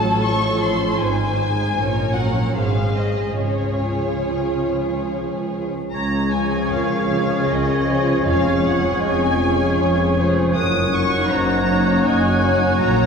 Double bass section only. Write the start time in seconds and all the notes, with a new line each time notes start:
Already playing: A1
1.00 G#1
1.76 A#1
2.56 G#1
3.40 C#2
5.94 C#2
6.72 C#2
7.50 C#2
8.27 F1
9.03 F1
9.81 F1
10.57 F#1
11.33 F#1
12.08 F#1
12.83 A#1